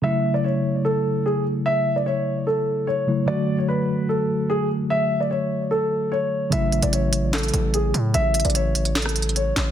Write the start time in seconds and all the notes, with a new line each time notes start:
0.02 C#3 F#3 A3 E4 E5
0.34 D5
0.44 C#5
0.85 A4
1.26 G#4
1.66 E5
1.96 D5
2.06 C#5
2.47 A4
2.87 C#5
3.07 C#3 F#3 A3 E4
3.26 D3 F#3 A3 F#4 D5
3.58 C#5
3.68 B4
4.09 A4
4.50 G#4
4.90 E5
5.20 D5
5.31 C#5
5.71 A4
6.12 C#5
6.50 A1 C#3 F#3 A3 E4 E5, closed hi-hat
6.72 closed hi-hat
6.82 A1 D5, closed hi-hat
6.93 C#5, closed hi-hat
7.13 closed hi-hat
7.33 A4, snare, clap, closed hi-hat
7.38 closed hi-hat
7.43 closed hi-hat
7.48 closed hi-hat
7.53 A1, closed hi-hat
7.74 G#4, closed hi-hat
7.94 A2, closed hi-hat
8.14 A1 E5, closed hi-hat
8.34 closed hi-hat, open hi-hat
8.40 closed hi-hat
8.45 A1 D5, closed hi-hat
8.50 closed hi-hat
8.55 C#5, closed hi-hat
8.75 closed hi-hat
8.85 closed hi-hat
8.95 A4, snare, clap, closed hi-hat
9.02 cross-stick, closed hi-hat
9.09 closed hi-hat
9.16 closed hi-hat
9.22 closed hi-hat
9.29 closed hi-hat
9.36 C#5, closed hi-hat
9.56 A1, snare, clap, closed hi-hat